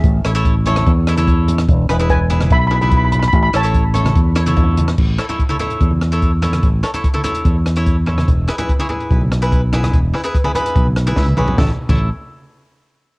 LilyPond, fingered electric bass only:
\new Staff \with { instrumentName = "Fingered electric bass" } { \clef bass \time 4/4 \key a \major \tempo 4 = 146 a,,8 a,,4. e,2 | e,,8 e,,4. b,,2 | a,,8 a,,4. e,2 | a,,8 r4. e,2 |
a,,8 r4. e,2 | e,,8 r4. b,,2 | e,,8 r4. b,,4 cis,8 b,,8 | a,,16 r8 a,,8 r2 r8. | }